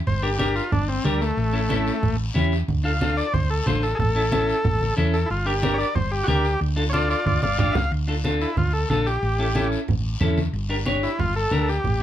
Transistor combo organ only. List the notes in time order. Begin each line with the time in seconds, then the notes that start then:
0.07 C5
0.23 G4
0.39 G4
0.56 F4
0.72 D4
0.89 C4
1.05 G3
1.21 A3
2.85 F5
3.17 D5
3.34 C5
3.50 A4
3.67 C5
3.83 A4
3.95 G#4
4.00 A4
5.13 A4
5.26 E4
5.31 F4
5.46 G4
5.74 C#5
5.78 D5
5.95 C5
6.11 G4
6.24 F#4
6.28 G4
6.89 F4 C#5
6.94 D5
7.10 F4 D5
7.26 F4 D5
7.42 D5 F5
7.60 D5 F5
7.72 E5
7.76 F5
8.41 E4
8.58 F4
8.73 A4
8.90 A4
9.06 G4
11.03 E4
11.20 F4
11.36 A4
11.62 A4
11.69 G4